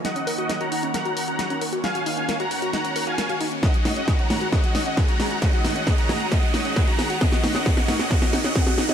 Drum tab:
HH |xxoxxxoxxxoxxxox|xxoxxxoxxxoxxxox|xxoxxxoxxxoxxxox|xxoxxxoxxxoxxxox|
SD |o---o---o---o---|o---o---o---o---|o-o-o-o-o-o-o-o-|o-o-o-o-o-o-o-o-|
CG |----------------|----------------|--o---o---------|--o---o---------|
BD |----------------|----------------|o---o---o---o---|o---o---o---o---|

HH |xxoxxxoxxxoxxxox|
SD |oooooooooooooooo|
CG |--o---o---------|
BD |o---o---o---o---|